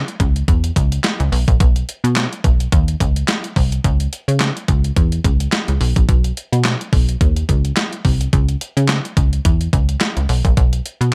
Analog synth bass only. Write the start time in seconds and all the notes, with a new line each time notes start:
0.20 C#2
0.48 E2
0.76 C#2
1.20 C#2
1.32 B1
1.48 A#1
1.60 B1
2.04 B2
2.44 B1
2.72 D#2
3.00 C#2
3.56 C2
3.84 C#2
4.28 C#3
4.68 C#2
4.97 E2
5.24 C#2
5.68 C#2
5.81 B1
5.96 A#1
6.09 B1
6.52 B2
6.93 B1
7.21 D#2
7.49 C#2
8.05 C2
8.33 C#2
8.77 C#3
9.17 C#2
9.45 E2
9.73 C#2
10.17 C#2
10.29 B1
10.45 A#1
10.57 B1
11.01 B2